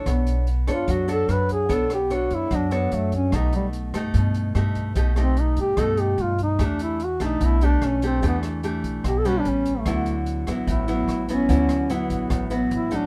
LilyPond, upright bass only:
\new Staff \with { instrumentName = "Upright bass" } { \clef bass \time 4/4 \key b \minor \tempo 4 = 147 b,,4. fis,8 fis,4 fis,4 | b,,4. fis,8 fis,4 fis,4 | b,,4. g,8 g,4 g,4 | b,,4. g,8 g,4 g,4 |
e,4. b,,8 b,,4 b,,4 | e,4. b,,8 b,,4 a,,4 | d,4. a,,8 a,,4 a,,4 | d,4. a,,8 a,,4 a,,4 | }